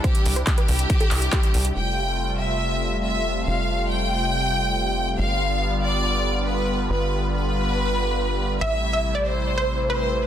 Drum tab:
HH |xxoxxxoxxxoxxxox|----------------|----------------|----------------|
CP |----x-----x-x---|----------------|----------------|----------------|
BD |o---o---o---o---|----------------|----------------|----------------|

HH |----------------|----------------|
CP |----------------|----------------|
BD |----------------|----------------|